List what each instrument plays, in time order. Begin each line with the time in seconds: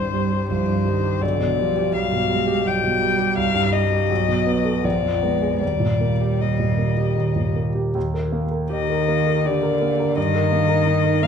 Already playing: grand piano C2 G2 G3 G4, cello G3, violin C5
0.14 grand piano G3
0.32 grand piano G4
0.50 grand piano C2, cello F3, violin C5
0.68 grand piano G2
0.85 cello D#3, grand piano G3
1.04 grand piano G4
1.21 grand piano B1, cello D3, violin D5
1.40 grand piano B2
1.59 cello F3, grand piano G3
1.77 grand piano G4
1.95 grand piano B1, cello G3, violin F5
2.12 grand piano B2
2.30 grand piano G3, cello G#3
2.48 grand piano G4
2.65 grand piano B1, cello G3, violin G5
2.84 grand piano B2
3.03 grand piano G3
3.20 grand piano G4
3.37 grand piano C2, violin F5
3.54 grand piano G2
3.73 grand piano G3, violin D#5
3.92 grand piano G4
4.10 grand piano B1, cello F#3
4.29 grand piano B2
4.47 grand piano B3
4.65 grand piano A4
4.84 grand piano A#1, cello F3, violin D5
5.03 grand piano F2
5.23 cello G#3, grand piano B3
5.42 grand piano G#4
5.60 grand piano D#2, cello G3, violin D5
5.80 grand piano A#2
6.01 grand piano A#3
6.21 grand piano G4
6.40 grand piano D#2, violin D#5
6.59 grand piano A#2
6.78 grand piano A#3
6.97 grand piano G4
7.16 grand piano D#2
7.36 grand piano A#2
7.56 grand piano A#3
7.75 grand piano G4
7.95 grand piano D#2
8.14 grand piano A#4
8.32 grand piano A#3
8.51 grand piano A#4
8.70 cello D#3, grand piano G4, violin D#5
8.89 grand piano A#4
9.08 grand piano A#3
9.27 grand piano A#4
9.45 cello D3, grand piano G4, violin D5
9.63 grand piano A#4
9.81 grand piano A#3
9.99 grand piano A#4
10.17 grand piano G2, cello D#3, violin D#5
10.35 grand piano A#4
10.52 grand piano A#3
10.69 grand piano A#4
10.87 grand piano D#4
11.05 grand piano A#4
11.22 cello F3, grand piano A#3, violin F5